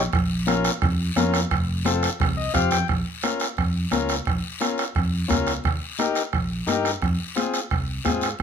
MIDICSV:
0, 0, Header, 1, 5, 480
1, 0, Start_track
1, 0, Tempo, 344432
1, 185, Time_signature, 4, 2, 24, 8
1, 11740, End_track
2, 0, Start_track
2, 0, Title_t, "Transistor combo organ"
2, 0, Program_c, 0, 18
2, 651, Note_on_c, 0, 61, 75
2, 656, Note_on_c, 0, 65, 73
2, 662, Note_on_c, 0, 70, 94
2, 993, Note_off_c, 0, 61, 0
2, 995, Note_off_c, 0, 65, 0
2, 998, Note_off_c, 0, 70, 0
2, 1618, Note_on_c, 0, 61, 87
2, 1626, Note_on_c, 0, 65, 82
2, 1636, Note_on_c, 0, 70, 90
2, 1955, Note_off_c, 0, 61, 0
2, 1959, Note_off_c, 0, 65, 0
2, 1964, Note_off_c, 0, 70, 0
2, 2589, Note_on_c, 0, 65, 65
2, 2591, Note_on_c, 0, 60, 79
2, 2601, Note_on_c, 0, 69, 78
2, 2920, Note_off_c, 0, 65, 0
2, 2921, Note_off_c, 0, 60, 0
2, 2926, Note_off_c, 0, 69, 0
2, 3300, Note_on_c, 0, 75, 66
2, 3523, Note_off_c, 0, 75, 0
2, 3535, Note_on_c, 0, 60, 82
2, 3536, Note_on_c, 0, 65, 69
2, 3539, Note_on_c, 0, 77, 73
2, 3550, Note_on_c, 0, 67, 92
2, 3762, Note_off_c, 0, 77, 0
2, 3788, Note_on_c, 0, 79, 73
2, 3873, Note_off_c, 0, 60, 0
2, 3873, Note_off_c, 0, 65, 0
2, 3880, Note_off_c, 0, 67, 0
2, 4006, Note_off_c, 0, 79, 0
2, 4503, Note_on_c, 0, 61, 67
2, 4506, Note_on_c, 0, 65, 58
2, 4510, Note_on_c, 0, 70, 67
2, 4836, Note_off_c, 0, 61, 0
2, 4838, Note_off_c, 0, 65, 0
2, 4840, Note_off_c, 0, 70, 0
2, 5453, Note_on_c, 0, 61, 80
2, 5464, Note_on_c, 0, 65, 67
2, 5464, Note_on_c, 0, 70, 85
2, 5792, Note_off_c, 0, 61, 0
2, 5797, Note_off_c, 0, 65, 0
2, 5797, Note_off_c, 0, 70, 0
2, 6418, Note_on_c, 0, 61, 74
2, 6422, Note_on_c, 0, 65, 65
2, 6426, Note_on_c, 0, 70, 71
2, 6754, Note_off_c, 0, 61, 0
2, 6756, Note_off_c, 0, 65, 0
2, 6759, Note_off_c, 0, 70, 0
2, 7361, Note_on_c, 0, 61, 77
2, 7364, Note_on_c, 0, 65, 75
2, 7380, Note_on_c, 0, 70, 86
2, 7706, Note_off_c, 0, 61, 0
2, 7708, Note_off_c, 0, 65, 0
2, 7716, Note_off_c, 0, 70, 0
2, 8345, Note_on_c, 0, 63, 71
2, 8351, Note_on_c, 0, 67, 68
2, 8356, Note_on_c, 0, 70, 81
2, 8679, Note_off_c, 0, 63, 0
2, 8682, Note_off_c, 0, 67, 0
2, 8684, Note_off_c, 0, 70, 0
2, 9293, Note_on_c, 0, 63, 83
2, 9297, Note_on_c, 0, 67, 73
2, 9305, Note_on_c, 0, 70, 89
2, 9633, Note_off_c, 0, 63, 0
2, 9635, Note_off_c, 0, 67, 0
2, 9639, Note_off_c, 0, 70, 0
2, 10255, Note_on_c, 0, 60, 61
2, 10261, Note_on_c, 0, 65, 59
2, 10261, Note_on_c, 0, 68, 77
2, 10594, Note_off_c, 0, 60, 0
2, 10597, Note_off_c, 0, 68, 0
2, 10598, Note_off_c, 0, 65, 0
2, 11213, Note_on_c, 0, 60, 75
2, 11216, Note_on_c, 0, 65, 74
2, 11223, Note_on_c, 0, 68, 81
2, 11554, Note_off_c, 0, 60, 0
2, 11555, Note_off_c, 0, 65, 0
2, 11559, Note_off_c, 0, 68, 0
2, 11740, End_track
3, 0, Start_track
3, 0, Title_t, "Fingered electric bass"
3, 0, Program_c, 1, 33
3, 184, Note_on_c, 1, 34, 108
3, 951, Note_off_c, 1, 34, 0
3, 1144, Note_on_c, 1, 41, 91
3, 1527, Note_off_c, 1, 41, 0
3, 1617, Note_on_c, 1, 41, 89
3, 2002, Note_off_c, 1, 41, 0
3, 2106, Note_on_c, 1, 29, 115
3, 2871, Note_off_c, 1, 29, 0
3, 3073, Note_on_c, 1, 36, 85
3, 3451, Note_off_c, 1, 36, 0
3, 3546, Note_on_c, 1, 41, 83
3, 3927, Note_off_c, 1, 41, 0
3, 4031, Note_on_c, 1, 34, 98
3, 4218, Note_off_c, 1, 34, 0
3, 4986, Note_on_c, 1, 41, 83
3, 5367, Note_off_c, 1, 41, 0
3, 5457, Note_on_c, 1, 37, 90
3, 5842, Note_off_c, 1, 37, 0
3, 5949, Note_on_c, 1, 34, 97
3, 6137, Note_off_c, 1, 34, 0
3, 6907, Note_on_c, 1, 41, 82
3, 7288, Note_off_c, 1, 41, 0
3, 7386, Note_on_c, 1, 37, 84
3, 7767, Note_off_c, 1, 37, 0
3, 7867, Note_on_c, 1, 39, 93
3, 8056, Note_off_c, 1, 39, 0
3, 8828, Note_on_c, 1, 34, 80
3, 9209, Note_off_c, 1, 34, 0
3, 9291, Note_on_c, 1, 43, 84
3, 9679, Note_off_c, 1, 43, 0
3, 9785, Note_on_c, 1, 41, 105
3, 9976, Note_off_c, 1, 41, 0
3, 10748, Note_on_c, 1, 36, 76
3, 11130, Note_off_c, 1, 36, 0
3, 11227, Note_on_c, 1, 44, 91
3, 11610, Note_off_c, 1, 44, 0
3, 11740, End_track
4, 0, Start_track
4, 0, Title_t, "Two-headed folk drums"
4, 185, Note_on_c, 9, 36, 84
4, 185, Note_on_c, 9, 37, 84
4, 324, Note_off_c, 9, 36, 0
4, 324, Note_off_c, 9, 37, 0
4, 670, Note_on_c, 9, 37, 86
4, 809, Note_off_c, 9, 37, 0
4, 904, Note_on_c, 9, 37, 85
4, 1043, Note_off_c, 9, 37, 0
4, 1141, Note_on_c, 9, 37, 79
4, 1145, Note_on_c, 9, 36, 94
4, 1280, Note_off_c, 9, 37, 0
4, 1285, Note_off_c, 9, 36, 0
4, 1625, Note_on_c, 9, 37, 77
4, 1765, Note_off_c, 9, 37, 0
4, 1863, Note_on_c, 9, 37, 82
4, 2002, Note_off_c, 9, 37, 0
4, 2109, Note_on_c, 9, 36, 77
4, 2109, Note_on_c, 9, 37, 87
4, 2248, Note_off_c, 9, 37, 0
4, 2249, Note_off_c, 9, 36, 0
4, 2589, Note_on_c, 9, 37, 77
4, 2729, Note_off_c, 9, 37, 0
4, 2830, Note_on_c, 9, 37, 78
4, 2969, Note_off_c, 9, 37, 0
4, 3074, Note_on_c, 9, 36, 85
4, 3086, Note_on_c, 9, 37, 87
4, 3213, Note_off_c, 9, 36, 0
4, 3225, Note_off_c, 9, 37, 0
4, 3548, Note_on_c, 9, 37, 76
4, 3549, Note_on_c, 9, 36, 69
4, 3688, Note_off_c, 9, 37, 0
4, 3689, Note_off_c, 9, 36, 0
4, 3792, Note_on_c, 9, 37, 83
4, 3931, Note_off_c, 9, 37, 0
4, 4031, Note_on_c, 9, 37, 75
4, 4032, Note_on_c, 9, 36, 75
4, 4171, Note_off_c, 9, 36, 0
4, 4171, Note_off_c, 9, 37, 0
4, 4510, Note_on_c, 9, 37, 81
4, 4649, Note_off_c, 9, 37, 0
4, 4755, Note_on_c, 9, 37, 69
4, 4894, Note_off_c, 9, 37, 0
4, 4990, Note_on_c, 9, 36, 76
4, 4993, Note_on_c, 9, 37, 75
4, 5130, Note_off_c, 9, 36, 0
4, 5132, Note_off_c, 9, 37, 0
4, 5460, Note_on_c, 9, 37, 72
4, 5599, Note_off_c, 9, 37, 0
4, 5710, Note_on_c, 9, 37, 71
4, 5849, Note_off_c, 9, 37, 0
4, 5951, Note_on_c, 9, 36, 80
4, 5953, Note_on_c, 9, 37, 79
4, 6090, Note_off_c, 9, 36, 0
4, 6092, Note_off_c, 9, 37, 0
4, 6434, Note_on_c, 9, 37, 80
4, 6573, Note_off_c, 9, 37, 0
4, 6679, Note_on_c, 9, 37, 76
4, 6818, Note_off_c, 9, 37, 0
4, 6908, Note_on_c, 9, 36, 77
4, 6913, Note_on_c, 9, 37, 73
4, 7048, Note_off_c, 9, 36, 0
4, 7052, Note_off_c, 9, 37, 0
4, 7390, Note_on_c, 9, 36, 66
4, 7394, Note_on_c, 9, 37, 76
4, 7530, Note_off_c, 9, 36, 0
4, 7534, Note_off_c, 9, 37, 0
4, 7628, Note_on_c, 9, 37, 75
4, 7767, Note_off_c, 9, 37, 0
4, 7870, Note_on_c, 9, 36, 79
4, 7878, Note_on_c, 9, 37, 84
4, 8010, Note_off_c, 9, 36, 0
4, 8017, Note_off_c, 9, 37, 0
4, 8356, Note_on_c, 9, 37, 70
4, 8496, Note_off_c, 9, 37, 0
4, 8584, Note_on_c, 9, 37, 68
4, 8724, Note_off_c, 9, 37, 0
4, 8821, Note_on_c, 9, 37, 79
4, 8829, Note_on_c, 9, 36, 74
4, 8960, Note_off_c, 9, 37, 0
4, 8968, Note_off_c, 9, 36, 0
4, 9316, Note_on_c, 9, 37, 77
4, 9455, Note_off_c, 9, 37, 0
4, 9548, Note_on_c, 9, 37, 73
4, 9687, Note_off_c, 9, 37, 0
4, 9788, Note_on_c, 9, 37, 78
4, 9789, Note_on_c, 9, 36, 78
4, 9928, Note_off_c, 9, 37, 0
4, 9929, Note_off_c, 9, 36, 0
4, 10271, Note_on_c, 9, 37, 71
4, 10410, Note_off_c, 9, 37, 0
4, 10507, Note_on_c, 9, 37, 66
4, 10647, Note_off_c, 9, 37, 0
4, 10748, Note_on_c, 9, 37, 79
4, 10749, Note_on_c, 9, 36, 73
4, 10887, Note_off_c, 9, 37, 0
4, 10888, Note_off_c, 9, 36, 0
4, 11225, Note_on_c, 9, 37, 77
4, 11228, Note_on_c, 9, 36, 62
4, 11364, Note_off_c, 9, 37, 0
4, 11367, Note_off_c, 9, 36, 0
4, 11476, Note_on_c, 9, 37, 78
4, 11615, Note_off_c, 9, 37, 0
4, 11740, End_track
5, 0, Start_track
5, 0, Title_t, "Drums"
5, 177, Note_on_c, 9, 74, 69
5, 182, Note_on_c, 9, 63, 36
5, 316, Note_off_c, 9, 74, 0
5, 321, Note_off_c, 9, 63, 0
5, 655, Note_on_c, 9, 63, 73
5, 656, Note_on_c, 9, 73, 68
5, 794, Note_off_c, 9, 63, 0
5, 795, Note_off_c, 9, 73, 0
5, 898, Note_on_c, 9, 73, 78
5, 1038, Note_off_c, 9, 73, 0
5, 1142, Note_on_c, 9, 74, 69
5, 1150, Note_on_c, 9, 63, 34
5, 1281, Note_off_c, 9, 74, 0
5, 1289, Note_off_c, 9, 63, 0
5, 1627, Note_on_c, 9, 63, 97
5, 1629, Note_on_c, 9, 73, 69
5, 1766, Note_off_c, 9, 63, 0
5, 1768, Note_off_c, 9, 73, 0
5, 1868, Note_on_c, 9, 73, 63
5, 2007, Note_off_c, 9, 73, 0
5, 2099, Note_on_c, 9, 63, 36
5, 2103, Note_on_c, 9, 74, 69
5, 2239, Note_off_c, 9, 63, 0
5, 2242, Note_off_c, 9, 74, 0
5, 2578, Note_on_c, 9, 63, 80
5, 2593, Note_on_c, 9, 73, 70
5, 2717, Note_off_c, 9, 63, 0
5, 2733, Note_off_c, 9, 73, 0
5, 2825, Note_on_c, 9, 73, 82
5, 2964, Note_off_c, 9, 73, 0
5, 3063, Note_on_c, 9, 74, 67
5, 3065, Note_on_c, 9, 64, 86
5, 3202, Note_off_c, 9, 74, 0
5, 3204, Note_off_c, 9, 64, 0
5, 3543, Note_on_c, 9, 73, 68
5, 3682, Note_off_c, 9, 73, 0
5, 3773, Note_on_c, 9, 73, 70
5, 3783, Note_on_c, 9, 64, 81
5, 3913, Note_off_c, 9, 73, 0
5, 3923, Note_off_c, 9, 64, 0
5, 4015, Note_on_c, 9, 74, 61
5, 4026, Note_on_c, 9, 63, 30
5, 4154, Note_off_c, 9, 74, 0
5, 4165, Note_off_c, 9, 63, 0
5, 4500, Note_on_c, 9, 73, 59
5, 4510, Note_on_c, 9, 63, 67
5, 4639, Note_off_c, 9, 73, 0
5, 4649, Note_off_c, 9, 63, 0
5, 4735, Note_on_c, 9, 73, 67
5, 4874, Note_off_c, 9, 73, 0
5, 4973, Note_on_c, 9, 74, 62
5, 4993, Note_on_c, 9, 63, 34
5, 5113, Note_off_c, 9, 74, 0
5, 5133, Note_off_c, 9, 63, 0
5, 5457, Note_on_c, 9, 63, 86
5, 5458, Note_on_c, 9, 73, 60
5, 5597, Note_off_c, 9, 63, 0
5, 5597, Note_off_c, 9, 73, 0
5, 5698, Note_on_c, 9, 73, 63
5, 5838, Note_off_c, 9, 73, 0
5, 5929, Note_on_c, 9, 74, 67
5, 5953, Note_on_c, 9, 63, 29
5, 6069, Note_off_c, 9, 74, 0
5, 6092, Note_off_c, 9, 63, 0
5, 6420, Note_on_c, 9, 73, 61
5, 6422, Note_on_c, 9, 63, 68
5, 6559, Note_off_c, 9, 73, 0
5, 6562, Note_off_c, 9, 63, 0
5, 6659, Note_on_c, 9, 73, 66
5, 6798, Note_off_c, 9, 73, 0
5, 6897, Note_on_c, 9, 74, 64
5, 6913, Note_on_c, 9, 63, 29
5, 7037, Note_off_c, 9, 74, 0
5, 7052, Note_off_c, 9, 63, 0
5, 7376, Note_on_c, 9, 63, 87
5, 7377, Note_on_c, 9, 73, 62
5, 7515, Note_off_c, 9, 63, 0
5, 7516, Note_off_c, 9, 73, 0
5, 7617, Note_on_c, 9, 73, 68
5, 7757, Note_off_c, 9, 73, 0
5, 7857, Note_on_c, 9, 74, 62
5, 7863, Note_on_c, 9, 63, 28
5, 7996, Note_off_c, 9, 74, 0
5, 8002, Note_off_c, 9, 63, 0
5, 8334, Note_on_c, 9, 73, 68
5, 8344, Note_on_c, 9, 63, 67
5, 8473, Note_off_c, 9, 73, 0
5, 8484, Note_off_c, 9, 63, 0
5, 8576, Note_on_c, 9, 73, 70
5, 8715, Note_off_c, 9, 73, 0
5, 8818, Note_on_c, 9, 74, 56
5, 8827, Note_on_c, 9, 63, 30
5, 8958, Note_off_c, 9, 74, 0
5, 8966, Note_off_c, 9, 63, 0
5, 9302, Note_on_c, 9, 73, 68
5, 9317, Note_on_c, 9, 63, 84
5, 9441, Note_off_c, 9, 73, 0
5, 9456, Note_off_c, 9, 63, 0
5, 9549, Note_on_c, 9, 73, 58
5, 9688, Note_off_c, 9, 73, 0
5, 9779, Note_on_c, 9, 74, 65
5, 9792, Note_on_c, 9, 63, 28
5, 9918, Note_off_c, 9, 74, 0
5, 9931, Note_off_c, 9, 63, 0
5, 10263, Note_on_c, 9, 73, 69
5, 10272, Note_on_c, 9, 63, 72
5, 10403, Note_off_c, 9, 73, 0
5, 10411, Note_off_c, 9, 63, 0
5, 10502, Note_on_c, 9, 73, 69
5, 10642, Note_off_c, 9, 73, 0
5, 10738, Note_on_c, 9, 74, 57
5, 10748, Note_on_c, 9, 63, 30
5, 10878, Note_off_c, 9, 74, 0
5, 10887, Note_off_c, 9, 63, 0
5, 11215, Note_on_c, 9, 73, 68
5, 11228, Note_on_c, 9, 63, 86
5, 11354, Note_off_c, 9, 73, 0
5, 11367, Note_off_c, 9, 63, 0
5, 11446, Note_on_c, 9, 73, 60
5, 11585, Note_off_c, 9, 73, 0
5, 11687, Note_on_c, 9, 74, 68
5, 11740, Note_off_c, 9, 74, 0
5, 11740, End_track
0, 0, End_of_file